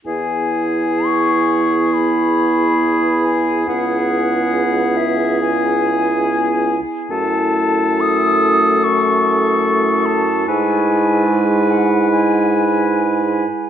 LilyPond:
<<
  \new Staff \with { instrumentName = "Flute" } { \time 4/4 \key e \major \tempo 4 = 71 gis''4 cis'''4 b''4. gis''8 | fis''4. e''8 gis''4. r8 | a''4 dis'''4 cis'''4. a''8 | gis''4. fis''8 gis''4. r8 | }
  \new Staff \with { instrumentName = "Oboe" } { \time 4/4 \key e \major gis'1 | gis'2.~ gis'8 r8 | a'1 | b'2.~ b'8 r8 | }
  \new Staff \with { instrumentName = "Clarinet" } { \time 4/4 \key e \major e'1 | e'2.~ e'8 r8 | e'1 | e'2.~ e'8 r8 | }
  \new Staff \with { instrumentName = "French horn" } { \time 4/4 \key e \major b1 | b2.~ b8 r8 | a1 | gis2.~ gis8 r8 | }
  \new Staff \with { instrumentName = "Bassoon" } { \clef bass \time 4/4 \key e \major e,1 | cis,2.~ cis,8 r8 | fis,1 | gis,2.~ gis,8 r8 | }
>>